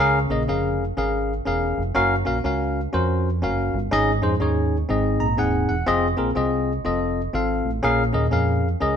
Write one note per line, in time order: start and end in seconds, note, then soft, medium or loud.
0.00 0.25 C#2 medium
0.00 0.75 C#3 medium
0.00 0.18 C#4 loud
0.00 0.18 G#4 medium
0.00 0.18 A#4 loud
0.00 0.18 F5 loud
0.00 0.28 A#5 soft
0.00 0.27 C#6 medium
0.30 0.45 A#1 medium
0.30 0.41 C#4 medium
0.30 0.41 G#4 medium
0.30 0.41 A#4 medium
0.30 0.42 D#5 medium
0.48 0.90 F1 medium
0.48 0.83 C#4 medium
0.48 0.83 G#4 medium
0.48 0.84 A#4 medium
0.48 0.84 F5 medium
0.97 1.39 G#1 medium
0.97 1.32 C#4 medium
0.97 1.32 G#4 medium
0.97 1.33 A#4 medium
0.97 1.33 F5 medium
1.46 1.72 E1 medium
1.46 1.81 C#4 medium
1.46 1.81 G#4 medium
1.46 1.82 A#4 medium
1.46 1.82 F5 medium
1.77 1.93 F1 medium
1.95 2.22 F#1 loud
1.95 2.14 C#4 loud
1.95 2.14 F#4 medium
1.95 2.14 A#4 medium
1.95 2.15 F5 loud
2.25 2.42 A#1 medium
2.25 2.37 C#4 medium
2.25 2.37 F#4 medium
2.25 2.37 A#4 medium
2.25 2.38 F5 medium
2.44 2.86 C#2 medium
2.44 2.79 C#4 medium
2.44 2.80 F#4 medium
2.44 2.80 A#4 medium
2.44 2.80 F5 medium
2.93 3.44 F2 medium
2.93 3.28 C#4 medium
2.93 3.28 F#4 medium
2.93 3.29 A#4 medium
2.93 3.29 C5 medium
3.42 3.69 F#1 medium
3.42 3.77 C#4 medium
3.42 3.78 F#4 medium
3.42 3.78 A#4 medium
3.42 3.78 F5 medium
3.74 3.89 G1 medium
3.91 4.18 G#1 medium
3.91 4.68 G#2 medium
3.91 4.10 C#4 loud
3.91 4.11 D#4 medium
3.91 4.11 G#4 medium
3.91 4.11 D#5 loud
4.22 4.38 F2 medium
4.22 4.33 C#4 medium
4.22 4.34 D#4 medium
4.22 4.34 G#4 medium
4.22 4.34 C5 medium
4.40 4.82 D#2 medium
4.40 4.75 C#4 medium
4.40 4.76 D#4 medium
4.40 4.76 G#4 medium
4.40 4.76 C#5 medium
4.89 5.16 G#1 medium
4.89 5.65 G#2 medium
4.89 5.24 C4 medium
4.89 5.24 D#4 medium
4.89 5.25 G#4 medium
4.89 5.25 D#5 medium
5.20 5.36 A#1 medium
5.20 5.37 A#5 medium
5.37 5.65 D#1 medium
5.37 5.73 C4 medium
5.37 5.73 D#4 medium
5.37 5.74 G#4 medium
5.37 5.68 F#5 medium
5.37 5.67 G#5 medium
5.69 5.85 E1 medium
5.69 5.86 F#5 medium
5.86 6.13 F1 medium
5.86 6.06 C4 loud
5.86 6.06 F4 medium
5.86 6.06 G#4 medium
5.86 6.07 D#5 loud
6.17 6.34 A#1 medium
6.17 6.29 C4 medium
6.17 6.29 F4 medium
6.17 6.29 G#4 medium
6.17 6.30 A#4 medium
6.35 6.78 C2 medium
6.35 6.71 C4 medium
6.35 6.71 F4 medium
6.35 6.71 G#4 medium
6.35 6.72 D#5 medium
6.85 7.27 F1 medium
6.85 7.20 C4 medium
6.85 7.20 F4 medium
6.85 7.21 A4 medium
6.85 7.21 D#5 medium
7.33 7.60 G#1 medium
7.33 7.69 C4 medium
7.33 7.69 F4 medium
7.33 7.70 A4 medium
7.33 7.70 F5 medium
7.65 7.81 A1 medium
7.83 8.10 A#1 medium
7.83 8.59 A#2 medium
7.83 8.02 C#4 loud
7.83 8.02 G#4 medium
7.83 8.03 A#4 medium
7.83 8.03 F5 loud
8.13 8.30 D#2 medium
8.13 8.25 C#4 medium
8.13 8.25 G#4 medium
8.13 8.25 A#4 medium
8.13 8.26 D#5 medium
8.31 8.74 F2 medium
8.31 8.67 C#4 medium
8.31 8.67 G#4 medium
8.31 8.67 A#4 medium
8.31 8.68 F5 medium
8.81 8.96 C#2 medium
8.81 8.96 C#4 medium
8.81 8.96 G#4 medium
8.81 8.96 A#4 medium
8.81 8.96 D#5 medium